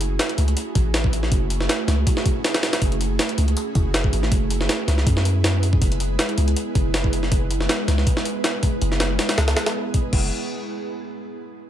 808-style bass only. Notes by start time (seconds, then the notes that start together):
Already playing: F#1
0.38 C#2
0.75 A1
1.32 F#1
1.88 C#2
2.82 F#1
3.38 C#2
3.75 F#1
4.13 G#1
4.32 F#1
4.88 C#2
5.07 F#2
5.82 F#1
6.38 C#2
6.75 F#1
7.32 F#1
7.88 C#2
8.82 F#1
9.38 C#2
10.13 F#1